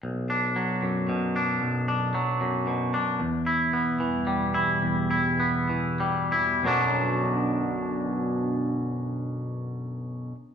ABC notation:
X:1
M:3/4
L:1/8
Q:1/4=106
K:Bm
V:1 name="Clean electric guitar" clef=bass
B,,, D F, F,, B,, D | B,,, D F, F,, B,, D | E,, E B, E, G, E | E,, E B, E, G, E |
[B,,,F,,B,,F,D]6- | [B,,,F,,B,,F,D]6 |]
V:2 name="Analog synth pad" clef=bass
z6 | z6 | [E,,B,,G,]6- | [E,,B,,G,]6 |
[B,,F,D]6- | [B,,F,D]6 |]